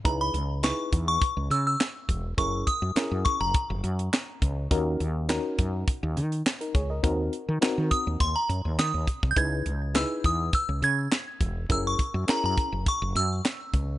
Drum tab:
HH |x-x-x-x-x-x-x-x-|x-x-x-x-x-xxx-x-|x-x-x-x-x-xxxxx-|x-x-x-x-x-x-x-x-|
CP |----x-------x---|----x-------x---|----x-------x---|----x-------x---|
SD |----o-------o---|----o-------o---|----o-------o---|----o-------o---|
BD |o-----o-o-----o-|o-o---o-o-----o-|o-----o-o-----o-|o-----o-o-----oo|

HH |x-x-x-x-x-x-x-x-|x-x-x-x-x-x-x-x-|
CP |----x-------x---|----x-------x---|
SD |----o-------o---|----o-------o---|
BD |o-----o-o-----o-|o-o---o-o-----o-|